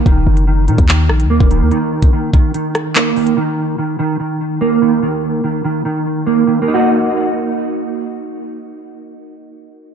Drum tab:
HH |x--x--xx---x--x-|x--x--x-x-x---ox|----------------|----------------|
CP |--------x-------|------------x---|----------------|----------------|
SD |----------r-----|----------r-----|----------------|----------------|
BD |o------o-----o--|---o--o---------|----------------|----------------|

HH |----------------|----------------|
CP |----------------|----------------|
SD |----------------|----------------|
BD |----------------|----------------|